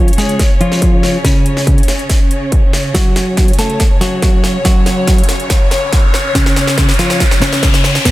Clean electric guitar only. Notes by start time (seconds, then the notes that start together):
0.18 G#3 G#4
0.61 F3 F4
1.24 C#3 C#4
2.94 F#3 F#4
3.59 A3 A4
4.01 F#3 F#4
4.65 F#3 F#4
6.35 C#3 C#4
6.99 F3 F4
7.42 C#3 C#4
8.05 B2 B3